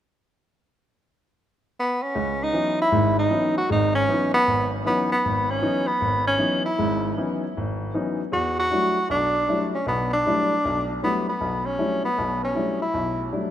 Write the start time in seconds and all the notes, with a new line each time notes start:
1.80 B3
2.03 C#4
2.15 C#2
2.43 D#4
2.53 E3 F#3 B3 C#4 D#4
2.82 E4
2.92 G#1 G#2
3.19 D#4
3.30 E3 F#3 B3 C#4 D#4
3.58 F#4
3.70 G#1 G#2 D#4
3.95 C#4
4.09 E3 F#3 B3 C#4 D#4
4.34 B3
4.47 G#1
4.85 E3 F#3 B3 C#4 D#4
5.12 B3
5.25 G#1
5.50 C#4
5.62 E3 F#3 B3 C#4 D#4
5.88 B3
6.01 G#1
6.27 C#4
6.39 E3 F#3 B3 C#4 D#4
6.65 E4
6.79 G#1 G#2
7.17 E3 F#3 B3 C#4 D#4
7.57 G#1
7.94 E3 F#3 B3 C#4 D#4
8.32 E2 F#4
8.59 F#4
8.70 F#3 G3 A3 D4 E4
9.10 B1 D4
9.48 F#3 G3 A3 D4 E4
9.74 C#4
9.86 B1 B2 B3
10.13 D4
10.26 F#3 G3 A3 D4 E4
10.65 B1
11.02 F#3 G3 A3 B3 D4 E4
11.29 B3
11.41 B1
11.66 C#4
11.78 F#3 G3 A3 D4 E4
12.04 B3
12.18 B1 B2
12.44 C#4
12.55 F#3 G3 A3 D4 E4
12.82 E4
12.94 B1
13.33 F#3 G3 A3 D4 E4